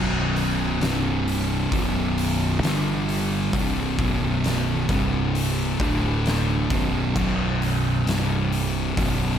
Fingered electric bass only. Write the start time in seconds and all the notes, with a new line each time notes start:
Already playing: B0
0.81 C1
1.72 B0
2.62 G1
3.53 C1
3.99 B0
4.89 C1
5.79 D1
6.70 B0
7.16 B0
8.06 C1
8.97 B0